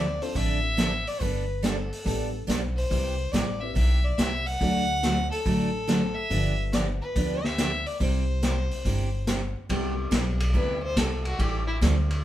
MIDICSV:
0, 0, Header, 1, 6, 480
1, 0, Start_track
1, 0, Key_signature, 0, "major"
1, 0, Tempo, 424628
1, 1367, Time_signature, 4, 2, 24, 8
1, 13840, End_track
2, 0, Start_track
2, 0, Title_t, "Fiddle"
2, 0, Program_c, 0, 110
2, 0, Note_on_c, 0, 74, 94
2, 248, Note_on_c, 0, 72, 88
2, 265, Note_off_c, 0, 74, 0
2, 408, Note_on_c, 0, 76, 105
2, 425, Note_off_c, 0, 72, 0
2, 1215, Note_on_c, 0, 74, 92
2, 1232, Note_off_c, 0, 76, 0
2, 1375, Note_on_c, 0, 71, 82
2, 1392, Note_off_c, 0, 74, 0
2, 1856, Note_on_c, 0, 69, 70
2, 1873, Note_off_c, 0, 71, 0
2, 2654, Note_off_c, 0, 69, 0
2, 3122, Note_on_c, 0, 72, 97
2, 3749, Note_on_c, 0, 74, 86
2, 3766, Note_off_c, 0, 72, 0
2, 4077, Note_on_c, 0, 76, 85
2, 4094, Note_off_c, 0, 74, 0
2, 4230, Note_off_c, 0, 76, 0
2, 4237, Note_on_c, 0, 76, 98
2, 4564, Note_on_c, 0, 74, 95
2, 4581, Note_off_c, 0, 76, 0
2, 4725, Note_on_c, 0, 76, 100
2, 4742, Note_off_c, 0, 74, 0
2, 5051, Note_on_c, 0, 78, 121
2, 5068, Note_off_c, 0, 76, 0
2, 5996, Note_off_c, 0, 78, 0
2, 6003, Note_on_c, 0, 69, 97
2, 6948, Note_on_c, 0, 76, 98
2, 6965, Note_off_c, 0, 69, 0
2, 7439, Note_off_c, 0, 76, 0
2, 7604, Note_on_c, 0, 74, 86
2, 7750, Note_off_c, 0, 74, 0
2, 7930, Note_on_c, 0, 71, 86
2, 8413, Note_on_c, 0, 76, 99
2, 8430, Note_off_c, 0, 71, 0
2, 8889, Note_on_c, 0, 74, 90
2, 8906, Note_off_c, 0, 76, 0
2, 9047, Note_off_c, 0, 74, 0
2, 9055, Note_on_c, 0, 72, 85
2, 10446, Note_off_c, 0, 72, 0
2, 11923, Note_on_c, 0, 71, 84
2, 12224, Note_off_c, 0, 71, 0
2, 12242, Note_on_c, 0, 72, 105
2, 12405, Note_on_c, 0, 69, 87
2, 12422, Note_off_c, 0, 72, 0
2, 12713, Note_off_c, 0, 69, 0
2, 12720, Note_on_c, 0, 66, 90
2, 12880, Note_on_c, 0, 67, 87
2, 12897, Note_off_c, 0, 66, 0
2, 13182, Note_off_c, 0, 67, 0
2, 13188, Note_on_c, 0, 64, 91
2, 13289, Note_off_c, 0, 64, 0
2, 13840, End_track
3, 0, Start_track
3, 0, Title_t, "Upright piano"
3, 0, Program_c, 1, 0
3, 246, Note_on_c, 1, 60, 72
3, 248, Note_on_c, 1, 62, 61
3, 249, Note_on_c, 1, 65, 66
3, 252, Note_on_c, 1, 69, 75
3, 854, Note_off_c, 1, 60, 0
3, 855, Note_off_c, 1, 62, 0
3, 855, Note_off_c, 1, 65, 0
3, 857, Note_off_c, 1, 69, 0
3, 2323, Note_on_c, 1, 59, 71
3, 2325, Note_on_c, 1, 62, 65
3, 2328, Note_on_c, 1, 69, 81
3, 2333, Note_on_c, 1, 67, 66
3, 2615, Note_off_c, 1, 59, 0
3, 2616, Note_off_c, 1, 62, 0
3, 2618, Note_off_c, 1, 69, 0
3, 2620, Note_off_c, 1, 67, 0
3, 3277, Note_on_c, 1, 60, 56
3, 3282, Note_on_c, 1, 64, 47
3, 3288, Note_on_c, 1, 67, 52
3, 3291, Note_on_c, 1, 71, 59
3, 3573, Note_off_c, 1, 60, 0
3, 3575, Note_off_c, 1, 64, 0
3, 3578, Note_off_c, 1, 67, 0
3, 3579, Note_off_c, 1, 71, 0
3, 4089, Note_on_c, 1, 60, 59
3, 4095, Note_on_c, 1, 64, 54
3, 4098, Note_on_c, 1, 67, 50
3, 4101, Note_on_c, 1, 71, 62
3, 4232, Note_off_c, 1, 60, 0
3, 4235, Note_off_c, 1, 64, 0
3, 4237, Note_off_c, 1, 67, 0
3, 4238, Note_off_c, 1, 71, 0
3, 5212, Note_on_c, 1, 62, 56
3, 5214, Note_on_c, 1, 66, 56
3, 5214, Note_on_c, 1, 74, 67
3, 5217, Note_on_c, 1, 69, 58
3, 6555, Note_off_c, 1, 62, 0
3, 6556, Note_off_c, 1, 66, 0
3, 6556, Note_off_c, 1, 74, 0
3, 6558, Note_off_c, 1, 69, 0
3, 7121, Note_on_c, 1, 62, 56
3, 7127, Note_on_c, 1, 65, 52
3, 7130, Note_on_c, 1, 67, 55
3, 7134, Note_on_c, 1, 71, 65
3, 8469, Note_off_c, 1, 62, 0
3, 8472, Note_off_c, 1, 65, 0
3, 8474, Note_off_c, 1, 67, 0
3, 8476, Note_off_c, 1, 71, 0
3, 9045, Note_on_c, 1, 60, 58
3, 9054, Note_on_c, 1, 64, 51
3, 9055, Note_on_c, 1, 67, 54
3, 9056, Note_on_c, 1, 72, 56
3, 10391, Note_off_c, 1, 60, 0
3, 10396, Note_off_c, 1, 64, 0
3, 10396, Note_off_c, 1, 67, 0
3, 10396, Note_off_c, 1, 72, 0
3, 10965, Note_on_c, 1, 55, 61
3, 10966, Note_on_c, 1, 59, 55
3, 10971, Note_on_c, 1, 60, 57
3, 10973, Note_on_c, 1, 64, 60
3, 10974, Note_on_c, 1, 67, 71
3, 12310, Note_off_c, 1, 55, 0
3, 12311, Note_off_c, 1, 59, 0
3, 12313, Note_off_c, 1, 60, 0
3, 12314, Note_off_c, 1, 64, 0
3, 12315, Note_off_c, 1, 67, 0
3, 13840, End_track
4, 0, Start_track
4, 0, Title_t, "Steel-string acoustic guitar"
4, 0, Program_c, 2, 25
4, 396, Note_on_c, 2, 50, 55
4, 401, Note_on_c, 2, 53, 51
4, 403, Note_on_c, 2, 60, 53
4, 409, Note_on_c, 2, 69, 64
4, 410, Note_on_c, 2, 62, 56
4, 660, Note_off_c, 2, 50, 0
4, 663, Note_off_c, 2, 53, 0
4, 664, Note_off_c, 2, 60, 0
4, 667, Note_off_c, 2, 69, 0
4, 668, Note_off_c, 2, 62, 0
4, 871, Note_on_c, 2, 50, 70
4, 872, Note_on_c, 2, 53, 71
4, 880, Note_on_c, 2, 60, 69
4, 881, Note_on_c, 2, 62, 84
4, 886, Note_on_c, 2, 69, 81
4, 1016, Note_off_c, 2, 50, 0
4, 1016, Note_off_c, 2, 53, 0
4, 1021, Note_off_c, 2, 60, 0
4, 1021, Note_off_c, 2, 62, 0
4, 1023, Note_off_c, 2, 69, 0
4, 1354, Note_on_c, 2, 55, 55
4, 1360, Note_on_c, 2, 59, 55
4, 1367, Note_on_c, 2, 62, 61
4, 1371, Note_on_c, 2, 69, 63
4, 1620, Note_off_c, 2, 55, 0
4, 1623, Note_off_c, 2, 59, 0
4, 1626, Note_off_c, 2, 62, 0
4, 1628, Note_off_c, 2, 69, 0
4, 1837, Note_on_c, 2, 55, 66
4, 1840, Note_on_c, 2, 59, 69
4, 1845, Note_on_c, 2, 62, 72
4, 1851, Note_on_c, 2, 69, 67
4, 1980, Note_off_c, 2, 55, 0
4, 1981, Note_off_c, 2, 59, 0
4, 1983, Note_off_c, 2, 62, 0
4, 1986, Note_off_c, 2, 69, 0
4, 2312, Note_on_c, 2, 55, 53
4, 2321, Note_on_c, 2, 59, 54
4, 2324, Note_on_c, 2, 62, 57
4, 2327, Note_on_c, 2, 69, 58
4, 2579, Note_off_c, 2, 55, 0
4, 2583, Note_off_c, 2, 59, 0
4, 2585, Note_off_c, 2, 62, 0
4, 2586, Note_off_c, 2, 69, 0
4, 2793, Note_on_c, 2, 55, 74
4, 2798, Note_on_c, 2, 59, 76
4, 2805, Note_on_c, 2, 62, 83
4, 2809, Note_on_c, 2, 69, 77
4, 2938, Note_off_c, 2, 55, 0
4, 2940, Note_off_c, 2, 59, 0
4, 2944, Note_off_c, 2, 62, 0
4, 2945, Note_off_c, 2, 69, 0
4, 3285, Note_on_c, 2, 48, 53
4, 3286, Note_on_c, 2, 55, 58
4, 3291, Note_on_c, 2, 59, 53
4, 3294, Note_on_c, 2, 64, 57
4, 3298, Note_on_c, 2, 67, 62
4, 3546, Note_off_c, 2, 48, 0
4, 3546, Note_off_c, 2, 55, 0
4, 3549, Note_off_c, 2, 59, 0
4, 3550, Note_off_c, 2, 64, 0
4, 3552, Note_off_c, 2, 67, 0
4, 3763, Note_on_c, 2, 48, 65
4, 3771, Note_on_c, 2, 55, 74
4, 3775, Note_on_c, 2, 59, 75
4, 3777, Note_on_c, 2, 64, 72
4, 3782, Note_on_c, 2, 67, 64
4, 3903, Note_off_c, 2, 48, 0
4, 3907, Note_off_c, 2, 55, 0
4, 3909, Note_off_c, 2, 59, 0
4, 3910, Note_off_c, 2, 64, 0
4, 3912, Note_off_c, 2, 67, 0
4, 4240, Note_on_c, 2, 48, 56
4, 4244, Note_on_c, 2, 59, 55
4, 4245, Note_on_c, 2, 55, 52
4, 4251, Note_on_c, 2, 64, 60
4, 4253, Note_on_c, 2, 67, 56
4, 4504, Note_off_c, 2, 48, 0
4, 4505, Note_off_c, 2, 59, 0
4, 4506, Note_off_c, 2, 55, 0
4, 4509, Note_off_c, 2, 64, 0
4, 4510, Note_off_c, 2, 67, 0
4, 4726, Note_on_c, 2, 48, 75
4, 4732, Note_on_c, 2, 55, 73
4, 4736, Note_on_c, 2, 59, 78
4, 4739, Note_on_c, 2, 64, 83
4, 4741, Note_on_c, 2, 67, 79
4, 4864, Note_off_c, 2, 48, 0
4, 4868, Note_off_c, 2, 55, 0
4, 4869, Note_off_c, 2, 59, 0
4, 4871, Note_off_c, 2, 64, 0
4, 4872, Note_off_c, 2, 67, 0
4, 5209, Note_on_c, 2, 50, 48
4, 5215, Note_on_c, 2, 54, 54
4, 5219, Note_on_c, 2, 57, 56
4, 5222, Note_on_c, 2, 62, 59
4, 5226, Note_on_c, 2, 66, 55
4, 5468, Note_off_c, 2, 50, 0
4, 5471, Note_off_c, 2, 54, 0
4, 5473, Note_off_c, 2, 57, 0
4, 5474, Note_off_c, 2, 62, 0
4, 5476, Note_off_c, 2, 66, 0
4, 5683, Note_on_c, 2, 50, 68
4, 5687, Note_on_c, 2, 54, 70
4, 5692, Note_on_c, 2, 57, 78
4, 5697, Note_on_c, 2, 62, 72
4, 5703, Note_on_c, 2, 66, 85
4, 5823, Note_off_c, 2, 50, 0
4, 5825, Note_off_c, 2, 54, 0
4, 5828, Note_off_c, 2, 57, 0
4, 5830, Note_off_c, 2, 62, 0
4, 5833, Note_off_c, 2, 66, 0
4, 6167, Note_on_c, 2, 50, 56
4, 6174, Note_on_c, 2, 54, 59
4, 6175, Note_on_c, 2, 57, 56
4, 6180, Note_on_c, 2, 62, 62
4, 6181, Note_on_c, 2, 66, 59
4, 6427, Note_off_c, 2, 50, 0
4, 6430, Note_off_c, 2, 54, 0
4, 6431, Note_off_c, 2, 57, 0
4, 6433, Note_off_c, 2, 62, 0
4, 6434, Note_off_c, 2, 66, 0
4, 6641, Note_on_c, 2, 50, 78
4, 6648, Note_on_c, 2, 54, 75
4, 6655, Note_on_c, 2, 57, 70
4, 6655, Note_on_c, 2, 62, 81
4, 6664, Note_on_c, 2, 66, 87
4, 6782, Note_off_c, 2, 50, 0
4, 6785, Note_off_c, 2, 54, 0
4, 6789, Note_off_c, 2, 57, 0
4, 6789, Note_off_c, 2, 62, 0
4, 6793, Note_off_c, 2, 66, 0
4, 7122, Note_on_c, 2, 50, 56
4, 7129, Note_on_c, 2, 53, 56
4, 7130, Note_on_c, 2, 59, 55
4, 7134, Note_on_c, 2, 62, 59
4, 7138, Note_on_c, 2, 67, 57
4, 7384, Note_off_c, 2, 50, 0
4, 7387, Note_off_c, 2, 53, 0
4, 7388, Note_off_c, 2, 59, 0
4, 7390, Note_off_c, 2, 62, 0
4, 7392, Note_off_c, 2, 67, 0
4, 7610, Note_on_c, 2, 50, 65
4, 7617, Note_on_c, 2, 53, 77
4, 7624, Note_on_c, 2, 59, 70
4, 7626, Note_on_c, 2, 62, 75
4, 7627, Note_on_c, 2, 67, 75
4, 7746, Note_off_c, 2, 50, 0
4, 7749, Note_off_c, 2, 53, 0
4, 7753, Note_off_c, 2, 59, 0
4, 7754, Note_off_c, 2, 62, 0
4, 7755, Note_off_c, 2, 67, 0
4, 8089, Note_on_c, 2, 50, 55
4, 8099, Note_on_c, 2, 53, 55
4, 8102, Note_on_c, 2, 59, 53
4, 8102, Note_on_c, 2, 62, 63
4, 8111, Note_on_c, 2, 67, 62
4, 8347, Note_off_c, 2, 50, 0
4, 8352, Note_off_c, 2, 53, 0
4, 8354, Note_off_c, 2, 59, 0
4, 8354, Note_off_c, 2, 62, 0
4, 8358, Note_off_c, 2, 67, 0
4, 8572, Note_on_c, 2, 50, 74
4, 8578, Note_on_c, 2, 53, 77
4, 8584, Note_on_c, 2, 59, 88
4, 8587, Note_on_c, 2, 62, 74
4, 8590, Note_on_c, 2, 67, 80
4, 8707, Note_off_c, 2, 50, 0
4, 8710, Note_off_c, 2, 53, 0
4, 8713, Note_off_c, 2, 59, 0
4, 8714, Note_off_c, 2, 62, 0
4, 8716, Note_off_c, 2, 67, 0
4, 9046, Note_on_c, 2, 48, 50
4, 9051, Note_on_c, 2, 55, 63
4, 9054, Note_on_c, 2, 60, 63
4, 9061, Note_on_c, 2, 64, 58
4, 9064, Note_on_c, 2, 67, 63
4, 9306, Note_off_c, 2, 48, 0
4, 9308, Note_off_c, 2, 55, 0
4, 9310, Note_off_c, 2, 60, 0
4, 9313, Note_off_c, 2, 64, 0
4, 9315, Note_off_c, 2, 67, 0
4, 9524, Note_on_c, 2, 48, 70
4, 9527, Note_on_c, 2, 55, 74
4, 9532, Note_on_c, 2, 60, 65
4, 9534, Note_on_c, 2, 64, 77
4, 9542, Note_on_c, 2, 67, 75
4, 9663, Note_off_c, 2, 48, 0
4, 9664, Note_off_c, 2, 55, 0
4, 9667, Note_off_c, 2, 60, 0
4, 9668, Note_off_c, 2, 64, 0
4, 9672, Note_off_c, 2, 67, 0
4, 10008, Note_on_c, 2, 48, 57
4, 10014, Note_on_c, 2, 55, 49
4, 10017, Note_on_c, 2, 60, 53
4, 10022, Note_on_c, 2, 64, 58
4, 10023, Note_on_c, 2, 67, 62
4, 10267, Note_off_c, 2, 48, 0
4, 10269, Note_off_c, 2, 55, 0
4, 10271, Note_off_c, 2, 60, 0
4, 10274, Note_off_c, 2, 64, 0
4, 10274, Note_off_c, 2, 67, 0
4, 10484, Note_on_c, 2, 48, 77
4, 10488, Note_on_c, 2, 55, 82
4, 10492, Note_on_c, 2, 64, 81
4, 10493, Note_on_c, 2, 60, 71
4, 10496, Note_on_c, 2, 67, 87
4, 10622, Note_off_c, 2, 48, 0
4, 10624, Note_off_c, 2, 55, 0
4, 10627, Note_off_c, 2, 60, 0
4, 10627, Note_off_c, 2, 64, 0
4, 10629, Note_off_c, 2, 67, 0
4, 10958, Note_on_c, 2, 48, 57
4, 10960, Note_on_c, 2, 55, 58
4, 10965, Note_on_c, 2, 59, 61
4, 10970, Note_on_c, 2, 64, 56
4, 10973, Note_on_c, 2, 67, 66
4, 11221, Note_off_c, 2, 48, 0
4, 11223, Note_off_c, 2, 55, 0
4, 11225, Note_off_c, 2, 59, 0
4, 11227, Note_off_c, 2, 64, 0
4, 11229, Note_off_c, 2, 67, 0
4, 11427, Note_on_c, 2, 48, 67
4, 11430, Note_on_c, 2, 55, 78
4, 11436, Note_on_c, 2, 59, 73
4, 11438, Note_on_c, 2, 64, 75
4, 11444, Note_on_c, 2, 67, 80
4, 11574, Note_off_c, 2, 48, 0
4, 11575, Note_off_c, 2, 55, 0
4, 11578, Note_off_c, 2, 59, 0
4, 11579, Note_off_c, 2, 64, 0
4, 11582, Note_off_c, 2, 67, 0
4, 11911, Note_on_c, 2, 48, 52
4, 11912, Note_on_c, 2, 55, 58
4, 11920, Note_on_c, 2, 64, 56
4, 11921, Note_on_c, 2, 59, 62
4, 11927, Note_on_c, 2, 67, 64
4, 12177, Note_off_c, 2, 48, 0
4, 12178, Note_off_c, 2, 55, 0
4, 12182, Note_off_c, 2, 64, 0
4, 12183, Note_off_c, 2, 59, 0
4, 12185, Note_off_c, 2, 67, 0
4, 12395, Note_on_c, 2, 48, 78
4, 12398, Note_on_c, 2, 59, 75
4, 12399, Note_on_c, 2, 55, 72
4, 12407, Note_on_c, 2, 67, 79
4, 12408, Note_on_c, 2, 64, 86
4, 12538, Note_off_c, 2, 48, 0
4, 12539, Note_off_c, 2, 55, 0
4, 12539, Note_off_c, 2, 59, 0
4, 12543, Note_off_c, 2, 67, 0
4, 12544, Note_off_c, 2, 64, 0
4, 12875, Note_on_c, 2, 52, 57
4, 12883, Note_on_c, 2, 55, 53
4, 12884, Note_on_c, 2, 60, 65
4, 12888, Note_on_c, 2, 64, 69
4, 12892, Note_on_c, 2, 69, 61
4, 13139, Note_off_c, 2, 52, 0
4, 13143, Note_off_c, 2, 55, 0
4, 13144, Note_off_c, 2, 60, 0
4, 13146, Note_off_c, 2, 64, 0
4, 13148, Note_off_c, 2, 69, 0
4, 13356, Note_on_c, 2, 52, 77
4, 13364, Note_on_c, 2, 55, 79
4, 13368, Note_on_c, 2, 60, 72
4, 13373, Note_on_c, 2, 64, 72
4, 13375, Note_on_c, 2, 69, 81
4, 13498, Note_off_c, 2, 52, 0
4, 13502, Note_off_c, 2, 55, 0
4, 13504, Note_off_c, 2, 60, 0
4, 13506, Note_off_c, 2, 64, 0
4, 13508, Note_off_c, 2, 69, 0
4, 13840, End_track
5, 0, Start_track
5, 0, Title_t, "Upright bass"
5, 0, Program_c, 3, 32
5, 0, Note_on_c, 3, 38, 90
5, 209, Note_off_c, 3, 38, 0
5, 398, Note_on_c, 3, 33, 77
5, 1170, Note_off_c, 3, 33, 0
5, 1364, Note_on_c, 3, 31, 83
5, 2134, Note_off_c, 3, 31, 0
5, 2326, Note_on_c, 3, 33, 86
5, 2735, Note_off_c, 3, 33, 0
5, 2806, Note_on_c, 3, 35, 82
5, 3215, Note_off_c, 3, 35, 0
5, 3288, Note_on_c, 3, 36, 91
5, 3672, Note_off_c, 3, 36, 0
5, 3766, Note_on_c, 3, 33, 84
5, 4175, Note_off_c, 3, 33, 0
5, 4247, Note_on_c, 3, 35, 86
5, 4655, Note_off_c, 3, 35, 0
5, 4728, Note_on_c, 3, 36, 81
5, 5136, Note_off_c, 3, 36, 0
5, 5209, Note_on_c, 3, 38, 95
5, 5977, Note_off_c, 3, 38, 0
5, 6168, Note_on_c, 3, 33, 90
5, 6936, Note_off_c, 3, 33, 0
5, 7126, Note_on_c, 3, 31, 93
5, 7895, Note_off_c, 3, 31, 0
5, 8088, Note_on_c, 3, 38, 81
5, 8856, Note_off_c, 3, 38, 0
5, 9046, Note_on_c, 3, 36, 98
5, 9814, Note_off_c, 3, 36, 0
5, 10003, Note_on_c, 3, 31, 84
5, 10772, Note_off_c, 3, 31, 0
5, 10959, Note_on_c, 3, 36, 82
5, 11428, Note_off_c, 3, 36, 0
5, 11436, Note_on_c, 3, 35, 95
5, 11906, Note_off_c, 3, 35, 0
5, 11915, Note_on_c, 3, 38, 92
5, 12386, Note_off_c, 3, 38, 0
5, 12395, Note_on_c, 3, 36, 87
5, 12865, Note_off_c, 3, 36, 0
5, 12872, Note_on_c, 3, 33, 87
5, 13344, Note_off_c, 3, 33, 0
5, 13355, Note_on_c, 3, 38, 90
5, 13825, Note_off_c, 3, 38, 0
5, 13840, End_track
6, 0, Start_track
6, 0, Title_t, "Drums"
6, 246, Note_on_c, 9, 46, 38
6, 359, Note_off_c, 9, 46, 0
6, 400, Note_on_c, 9, 36, 36
6, 401, Note_on_c, 9, 46, 46
6, 513, Note_off_c, 9, 36, 0
6, 514, Note_off_c, 9, 46, 0
6, 884, Note_on_c, 9, 38, 73
6, 884, Note_on_c, 9, 42, 54
6, 997, Note_off_c, 9, 38, 0
6, 997, Note_off_c, 9, 42, 0
6, 1210, Note_on_c, 9, 46, 38
6, 1323, Note_off_c, 9, 46, 0
6, 1366, Note_on_c, 9, 36, 31
6, 1368, Note_on_c, 9, 46, 41
6, 1479, Note_off_c, 9, 36, 0
6, 1481, Note_off_c, 9, 46, 0
6, 1850, Note_on_c, 9, 38, 66
6, 1850, Note_on_c, 9, 42, 55
6, 1963, Note_off_c, 9, 38, 0
6, 1963, Note_off_c, 9, 42, 0
6, 2176, Note_on_c, 9, 46, 41
6, 2289, Note_off_c, 9, 46, 0
6, 2330, Note_on_c, 9, 36, 33
6, 2340, Note_on_c, 9, 46, 49
6, 2443, Note_off_c, 9, 36, 0
6, 2453, Note_off_c, 9, 46, 0
6, 2817, Note_on_c, 9, 38, 69
6, 2817, Note_on_c, 9, 42, 56
6, 2930, Note_off_c, 9, 38, 0
6, 2930, Note_off_c, 9, 42, 0
6, 3139, Note_on_c, 9, 46, 39
6, 3252, Note_off_c, 9, 46, 0
6, 3291, Note_on_c, 9, 36, 30
6, 3299, Note_on_c, 9, 46, 42
6, 3404, Note_off_c, 9, 36, 0
6, 3412, Note_off_c, 9, 46, 0
6, 3774, Note_on_c, 9, 38, 68
6, 3774, Note_on_c, 9, 42, 52
6, 3887, Note_off_c, 9, 38, 0
6, 3887, Note_off_c, 9, 42, 0
6, 4250, Note_on_c, 9, 36, 38
6, 4251, Note_on_c, 9, 46, 49
6, 4363, Note_off_c, 9, 36, 0
6, 4364, Note_off_c, 9, 46, 0
6, 4731, Note_on_c, 9, 38, 75
6, 4731, Note_on_c, 9, 42, 59
6, 4844, Note_off_c, 9, 38, 0
6, 4844, Note_off_c, 9, 42, 0
6, 5050, Note_on_c, 9, 46, 40
6, 5163, Note_off_c, 9, 46, 0
6, 5210, Note_on_c, 9, 36, 29
6, 5210, Note_on_c, 9, 46, 42
6, 5323, Note_off_c, 9, 36, 0
6, 5324, Note_off_c, 9, 46, 0
6, 5689, Note_on_c, 9, 38, 63
6, 5689, Note_on_c, 9, 42, 54
6, 5802, Note_off_c, 9, 38, 0
6, 5802, Note_off_c, 9, 42, 0
6, 6015, Note_on_c, 9, 46, 39
6, 6128, Note_off_c, 9, 46, 0
6, 6170, Note_on_c, 9, 36, 38
6, 6171, Note_on_c, 9, 46, 46
6, 6283, Note_off_c, 9, 36, 0
6, 6284, Note_off_c, 9, 46, 0
6, 6651, Note_on_c, 9, 38, 68
6, 6651, Note_on_c, 9, 42, 54
6, 6764, Note_off_c, 9, 38, 0
6, 6764, Note_off_c, 9, 42, 0
6, 7131, Note_on_c, 9, 46, 43
6, 7132, Note_on_c, 9, 36, 30
6, 7244, Note_off_c, 9, 46, 0
6, 7245, Note_off_c, 9, 36, 0
6, 7607, Note_on_c, 9, 38, 68
6, 7607, Note_on_c, 9, 42, 54
6, 7720, Note_off_c, 9, 38, 0
6, 7720, Note_off_c, 9, 42, 0
6, 8089, Note_on_c, 9, 46, 46
6, 8092, Note_on_c, 9, 36, 36
6, 8202, Note_off_c, 9, 46, 0
6, 8205, Note_off_c, 9, 36, 0
6, 8410, Note_on_c, 9, 38, 49
6, 8523, Note_off_c, 9, 38, 0
6, 8570, Note_on_c, 9, 38, 69
6, 8570, Note_on_c, 9, 42, 58
6, 8683, Note_off_c, 9, 38, 0
6, 8683, Note_off_c, 9, 42, 0
6, 8888, Note_on_c, 9, 46, 38
6, 9001, Note_off_c, 9, 46, 0
6, 9047, Note_on_c, 9, 46, 40
6, 9049, Note_on_c, 9, 36, 34
6, 9160, Note_off_c, 9, 46, 0
6, 9162, Note_off_c, 9, 36, 0
6, 9524, Note_on_c, 9, 38, 63
6, 9524, Note_on_c, 9, 42, 57
6, 9637, Note_off_c, 9, 38, 0
6, 9637, Note_off_c, 9, 42, 0
6, 9848, Note_on_c, 9, 46, 35
6, 9961, Note_off_c, 9, 46, 0
6, 10005, Note_on_c, 9, 36, 33
6, 10007, Note_on_c, 9, 46, 44
6, 10118, Note_off_c, 9, 36, 0
6, 10120, Note_off_c, 9, 46, 0
6, 10479, Note_on_c, 9, 38, 71
6, 10479, Note_on_c, 9, 42, 55
6, 10593, Note_off_c, 9, 38, 0
6, 10593, Note_off_c, 9, 42, 0
6, 10960, Note_on_c, 9, 36, 25
6, 10962, Note_on_c, 9, 51, 58
6, 11073, Note_off_c, 9, 36, 0
6, 11075, Note_off_c, 9, 51, 0
6, 11438, Note_on_c, 9, 36, 25
6, 11438, Note_on_c, 9, 38, 72
6, 11438, Note_on_c, 9, 44, 52
6, 11438, Note_on_c, 9, 51, 69
6, 11551, Note_off_c, 9, 36, 0
6, 11551, Note_off_c, 9, 38, 0
6, 11551, Note_off_c, 9, 44, 0
6, 11551, Note_off_c, 9, 51, 0
6, 11759, Note_on_c, 9, 51, 69
6, 11872, Note_off_c, 9, 51, 0
6, 11916, Note_on_c, 9, 36, 24
6, 12029, Note_off_c, 9, 36, 0
6, 12395, Note_on_c, 9, 36, 26
6, 12397, Note_on_c, 9, 38, 75
6, 12397, Note_on_c, 9, 44, 63
6, 12397, Note_on_c, 9, 51, 81
6, 12508, Note_off_c, 9, 36, 0
6, 12510, Note_off_c, 9, 38, 0
6, 12510, Note_off_c, 9, 44, 0
6, 12510, Note_off_c, 9, 51, 0
6, 12719, Note_on_c, 9, 51, 45
6, 12832, Note_off_c, 9, 51, 0
6, 12875, Note_on_c, 9, 36, 24
6, 12879, Note_on_c, 9, 51, 55
6, 12988, Note_off_c, 9, 36, 0
6, 12992, Note_off_c, 9, 51, 0
6, 13359, Note_on_c, 9, 36, 19
6, 13364, Note_on_c, 9, 38, 65
6, 13364, Note_on_c, 9, 44, 61
6, 13364, Note_on_c, 9, 51, 65
6, 13472, Note_off_c, 9, 36, 0
6, 13477, Note_off_c, 9, 38, 0
6, 13477, Note_off_c, 9, 44, 0
6, 13477, Note_off_c, 9, 51, 0
6, 13683, Note_on_c, 9, 51, 50
6, 13796, Note_off_c, 9, 51, 0
6, 13840, End_track
0, 0, End_of_file